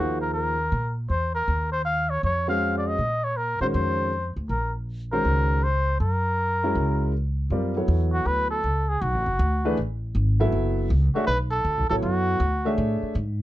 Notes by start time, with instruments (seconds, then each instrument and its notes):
Already playing: upright bass D#2, upright piano F3 A#3 D#4 G#4 C5, muted trumpet F#4
0.21 muted trumpet A#4
0.34 muted trumpet A#4
0.72 upright bass A#2
1.10 upright bass E2, muted trumpet C5
1.35 muted trumpet A#4
1.48 upright bass D#2
1.72 muted trumpet C5
1.85 muted trumpet F5
2.10 muted trumpet C#5
2.23 upright bass F2, muted trumpet C#5
2.48 upright piano G#3 C#4 F#4 C5 F5, muted trumpet F5
2.78 muted trumpet D5
2.87 muted trumpet D#5
2.98 upright bass A#2
3.24 muted trumpet C#5
3.37 muted trumpet A#4
3.60 upright bass A#2, upright piano D#3 G#3 C#4 F#4 C5, muted trumpet C5
3.74 upright bass F2, muted trumpet C5
4.36 upright bass D2
4.49 upright bass A#1, muted trumpet A#4
5.12 upright piano D#3 G#3 C#4 F#4 C5, muted trumpet A#4
5.25 upright bass C#2
5.63 muted trumpet C5
6.00 upright bass F#2, muted trumpet A#4
6.63 upright piano G#3 C#4 E4 F#4 A#4
6.75 upright bass C#2
7.50 upright bass F#2, upright piano G3 C4 F4 A#4 D5
7.77 upright piano F#3 B3 E4 A4 C#5
7.88 upright bass E2
8.13 muted trumpet F#4
8.25 upright bass D2, muted trumpet B4
8.50 muted trumpet A4
8.63 upright bass C#2
8.89 muted trumpet G#4
9.01 upright bass B1, muted trumpet F#4
9.14 upright bass A1
9.26 upright bass F#1
9.39 upright bass D2
9.65 upright piano E3 A3 D4 G#4 B4
9.77 upright bass A1
10.15 upright bass G#1
10.40 upright piano F#3 B3 E4 A4 E5
10.52 upright bass F#1
10.90 upright bass C#2
11.15 upright piano A3 D4 G#4 C#5 E5, muted trumpet F#4, muted upright bass stroke
11.27 upright bass B1, muted trumpet B4
11.51 muted trumpet A4
11.65 upright bass D2
11.77 upright bass B1
11.90 upright bass A1, upright piano F#3 B3 E4 A4 C#5, muted trumpet A4
12.02 upright bass F#2, muted trumpet F#4
12.40 upright bass D2
12.65 upright piano A3 D4 G#4 C#5 E5
12.78 upright bass A2
13.03 muted upright bass stroke
13.15 upright bass G#2